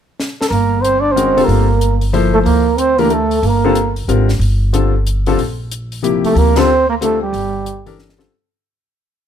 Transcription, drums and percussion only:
0.20 snare
0.41 snare
0.52 open hi-hat
0.85 closed hi-hat
1.17 closed hi-hat
1.38 open hi-hat
1.49 open hi-hat
1.81 closed hi-hat
2.01 open hi-hat
2.14 open hi-hat
2.46 open hi-hat
2.78 closed hi-hat
2.98 open hi-hat
3.10 closed hi-hat
3.31 open hi-hat
3.43 open hi-hat
3.75 closed hi-hat
3.96 open hi-hat
4.09 closed hi-hat
4.29 snare, open hi-hat
4.41 open hi-hat
4.74 closed hi-hat
5.07 closed hi-hat
5.26 open hi-hat
5.39 open hi-hat
5.72 closed hi-hat
5.92 open hi-hat
6.04 closed hi-hat
6.25 open hi-hat
6.36 open hi-hat
6.56 snare, ride
7.02 closed hi-hat
7.34 open hi-hat
7.66 closed hi-hat
7.87 open hi-hat
7.99 snare
8.09 snare
8.19 snare

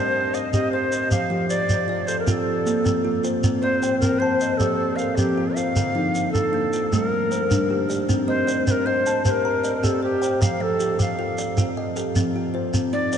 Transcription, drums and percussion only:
0.34 shekere
0.53 shekere
0.92 shekere
1.11 shekere
1.50 shekere
1.69 shekere
2.08 shekere
2.27 shekere
2.67 shekere
2.86 shekere
3.24 shekere
3.44 shekere
3.83 shekere
4.02 shekere
4.41 shekere
4.60 shekere
4.99 shekere
5.18 shekere
5.57 shekere
5.76 shekere
6.15 shekere
6.35 shekere
6.73 shekere
6.93 shekere
7.32 shekere
7.51 shekere
7.90 shekere
8.09 shekere
8.48 shekere
8.67 shekere
9.06 shekere
9.25 shekere
9.64 shekere
9.84 shekere
10.23 shekere
10.42 shekere
10.80 shekere
11.00 shekere
11.38 shekere
11.57 shekere
11.96 shekere
12.16 shekere
12.74 shekere
13.12 shekere

